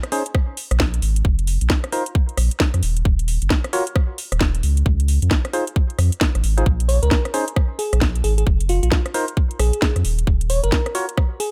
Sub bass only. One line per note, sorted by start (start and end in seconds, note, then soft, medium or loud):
0.71 1.00 A#1 loud
1.02 1.22 G#1 medium
1.25 1.58 F1 loud
1.61 1.69 A#1 medium
2.38 2.50 A#1 loud
2.74 2.82 F2 loud
2.83 3.03 D#1 medium
3.05 3.39 D#1 loud
3.42 3.49 F#1 medium
4.32 4.61 D#1 loud
4.63 4.83 C#2 medium
4.86 5.19 C#2 loud
5.22 5.30 F2 medium
5.99 6.10 F2 loud
6.35 6.42 G#1 loud
6.44 6.64 G#1 medium
6.66 6.99 A#1 loud
7.03 7.10 C#2 medium
7.93 8.22 A#1 loud
8.24 8.44 G#1 medium
8.47 8.80 F1 loud
8.83 8.90 A#1 medium
9.60 9.71 A#1 loud
9.96 10.03 F2 loud
10.05 10.25 D#1 medium
10.27 10.60 D#1 loud
10.64 10.71 F#1 medium